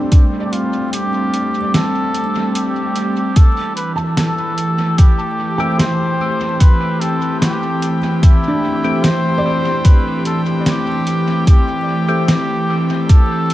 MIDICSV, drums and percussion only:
0, 0, Header, 1, 2, 480
1, 0, Start_track
1, 0, Key_signature, 0, "minor"
1, 0, Tempo, 810811
1, 72, Time_signature, 4, 2, 24, 8
1, 8014, End_track
2, 0, Start_track
2, 0, Title_t, "Drums"
2, 70, Note_on_c, 9, 42, 51
2, 71, Note_on_c, 9, 36, 92
2, 129, Note_off_c, 9, 42, 0
2, 131, Note_off_c, 9, 36, 0
2, 312, Note_on_c, 9, 42, 28
2, 371, Note_off_c, 9, 42, 0
2, 551, Note_on_c, 9, 42, 53
2, 610, Note_off_c, 9, 42, 0
2, 791, Note_on_c, 9, 42, 28
2, 850, Note_off_c, 9, 42, 0
2, 1032, Note_on_c, 9, 38, 84
2, 1032, Note_on_c, 9, 42, 53
2, 1091, Note_off_c, 9, 38, 0
2, 1091, Note_off_c, 9, 42, 0
2, 1270, Note_on_c, 9, 42, 28
2, 1329, Note_off_c, 9, 42, 0
2, 1511, Note_on_c, 9, 42, 52
2, 1570, Note_off_c, 9, 42, 0
2, 1750, Note_on_c, 9, 42, 30
2, 1809, Note_off_c, 9, 42, 0
2, 1990, Note_on_c, 9, 42, 55
2, 1992, Note_on_c, 9, 36, 105
2, 2049, Note_off_c, 9, 42, 0
2, 2051, Note_off_c, 9, 36, 0
2, 2230, Note_on_c, 9, 42, 31
2, 2290, Note_off_c, 9, 42, 0
2, 2470, Note_on_c, 9, 38, 81
2, 2470, Note_on_c, 9, 42, 55
2, 2529, Note_off_c, 9, 38, 0
2, 2529, Note_off_c, 9, 42, 0
2, 2710, Note_on_c, 9, 42, 30
2, 2769, Note_off_c, 9, 42, 0
2, 2950, Note_on_c, 9, 42, 53
2, 2952, Note_on_c, 9, 36, 100
2, 3009, Note_off_c, 9, 42, 0
2, 3012, Note_off_c, 9, 36, 0
2, 3430, Note_on_c, 9, 38, 76
2, 3430, Note_on_c, 9, 42, 57
2, 3489, Note_off_c, 9, 38, 0
2, 3489, Note_off_c, 9, 42, 0
2, 3910, Note_on_c, 9, 42, 59
2, 3912, Note_on_c, 9, 36, 105
2, 3969, Note_off_c, 9, 42, 0
2, 3971, Note_off_c, 9, 36, 0
2, 4153, Note_on_c, 9, 42, 30
2, 4212, Note_off_c, 9, 42, 0
2, 4392, Note_on_c, 9, 38, 85
2, 4392, Note_on_c, 9, 42, 59
2, 4451, Note_off_c, 9, 38, 0
2, 4451, Note_off_c, 9, 42, 0
2, 4631, Note_on_c, 9, 42, 31
2, 4691, Note_off_c, 9, 42, 0
2, 4872, Note_on_c, 9, 36, 105
2, 4872, Note_on_c, 9, 42, 53
2, 4931, Note_off_c, 9, 36, 0
2, 4931, Note_off_c, 9, 42, 0
2, 5351, Note_on_c, 9, 38, 83
2, 5351, Note_on_c, 9, 42, 56
2, 5410, Note_off_c, 9, 38, 0
2, 5410, Note_off_c, 9, 42, 0
2, 5829, Note_on_c, 9, 42, 58
2, 5831, Note_on_c, 9, 36, 112
2, 5888, Note_off_c, 9, 42, 0
2, 5890, Note_off_c, 9, 36, 0
2, 6070, Note_on_c, 9, 42, 30
2, 6129, Note_off_c, 9, 42, 0
2, 6312, Note_on_c, 9, 38, 83
2, 6312, Note_on_c, 9, 42, 55
2, 6371, Note_off_c, 9, 38, 0
2, 6371, Note_off_c, 9, 42, 0
2, 6552, Note_on_c, 9, 42, 29
2, 6611, Note_off_c, 9, 42, 0
2, 6791, Note_on_c, 9, 36, 104
2, 6792, Note_on_c, 9, 42, 54
2, 6850, Note_off_c, 9, 36, 0
2, 6851, Note_off_c, 9, 42, 0
2, 7272, Note_on_c, 9, 38, 82
2, 7272, Note_on_c, 9, 42, 54
2, 7331, Note_off_c, 9, 38, 0
2, 7331, Note_off_c, 9, 42, 0
2, 7751, Note_on_c, 9, 42, 51
2, 7752, Note_on_c, 9, 36, 107
2, 7810, Note_off_c, 9, 42, 0
2, 7811, Note_off_c, 9, 36, 0
2, 7992, Note_on_c, 9, 42, 29
2, 8014, Note_off_c, 9, 42, 0
2, 8014, End_track
0, 0, End_of_file